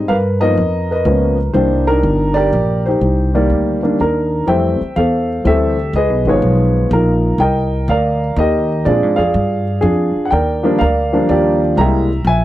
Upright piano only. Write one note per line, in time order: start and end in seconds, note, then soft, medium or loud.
0.08 0.39 A#4 medium
0.08 0.39 B4 medium
0.08 0.16 F5 medium
0.40 0.56 F3 medium
0.40 0.56 A#3 soft
0.40 0.56 B3 medium
0.40 0.57 D#4 medium
0.40 0.90 A#4 medium
0.40 0.90 B4 medium
0.40 0.91 D#5 medium
0.91 1.52 A#4 medium
0.91 1.51 B4 medium
0.91 1.37 D#5 medium
1.06 1.36 F3 medium
1.06 1.36 A#3 soft
1.06 1.37 B3 soft
1.06 1.37 C#4 medium
1.53 1.84 D#3 medium
1.53 1.84 G3 medium
1.53 1.84 A#3 soft
1.53 1.85 D4 medium
1.53 1.88 D#4 medium
1.53 2.33 G4 medium
1.53 1.89 C5 medium
1.87 2.49 D4 medium
1.87 2.49 D#4 medium
1.87 2.35 A#4 medium
2.34 2.86 G4 medium
2.34 2.97 A#4 medium
2.34 2.81 D5 loud
2.86 3.96 D#4 medium
2.86 3.96 G4 medium
2.86 3.95 C5 medium
3.34 3.80 D#3 medium
3.34 3.80 G3 medium
3.34 3.80 A#3 medium
3.34 3.80 D5 medium
3.82 3.97 D#3 medium
3.82 3.97 G3 medium
3.82 3.97 A#3 medium
3.82 3.98 D4 medium
4.01 4.45 D4 medium
4.01 4.46 D#4 soft
4.01 4.45 A#4 medium
4.47 4.77 E3 medium
4.47 4.77 G3 medium
4.47 4.78 A3 soft
4.47 4.78 C4 medium
4.47 4.96 C5 medium
4.47 5.26 E5 medium
4.47 4.98 G5 medium
4.96 5.46 A4 medium
4.96 5.75 C5 medium
4.96 5.42 F5 medium
5.44 5.75 E3 medium
5.44 5.75 G3 medium
5.44 5.75 A3 medium
5.44 5.75 C4 medium
5.44 5.92 G4 medium
5.44 5.92 A4 medium
5.44 5.91 E5 medium
5.96 6.29 G#4 medium
5.96 6.73 B4 medium
5.96 6.29 D#5 medium
6.27 6.88 D#3 medium
6.27 6.88 F3 medium
6.27 6.88 G#3 medium
6.27 6.89 B3 medium
6.27 6.89 F4 medium
6.27 6.89 G#4 medium
6.27 6.88 C#5 medium
6.93 7.38 D#4 medium
6.93 7.38 F4 medium
6.93 7.40 A#4 medium
7.40 7.90 A#4 medium
7.40 8.18 D#5 medium
7.40 7.90 G5 medium
7.89 8.38 A#4 medium
7.89 8.67 D5 medium
7.89 8.39 F5 medium
8.39 8.84 G4 medium
8.39 8.84 A#4 medium
8.39 8.83 D#5 medium
8.85 9.15 F3 medium
8.85 9.16 G#3 soft
8.85 9.16 C4 soft
8.85 9.16 D4 medium
8.85 9.64 F4 medium
8.85 9.16 G#4 medium
8.85 9.16 D5 medium
9.16 9.79 G#4 medium
9.16 9.78 D5 medium
9.16 9.78 F5 medium
9.81 10.28 D4 medium
9.81 10.28 F4 medium
9.81 10.28 G#4 medium
10.25 10.31 F#5 medium
10.31 10.80 A#4 medium
10.31 10.79 D5 medium
10.31 10.81 G5 medium
10.63 10.78 F3 medium
10.63 10.78 G3 medium
10.63 10.79 A#3 medium
10.63 10.79 D4 medium
10.79 11.59 A#4 medium
10.79 11.28 D5 medium
10.79 11.30 F5 medium
11.13 11.74 F3 medium
11.13 11.74 G3 medium
11.13 11.74 A#3 medium
11.13 11.75 D4 medium
11.29 11.75 F4 medium
11.29 11.76 G4 medium
11.29 11.74 D5 medium
11.77 12.07 G3 medium
11.77 12.08 G#3 medium
11.77 12.08 A#3 medium
11.77 12.08 E4 medium
11.77 12.28 E5 medium
11.77 12.45 G5 medium
11.77 12.23 A#5 loud
12.27 12.45 E5 medium
12.27 12.45 G#5 loud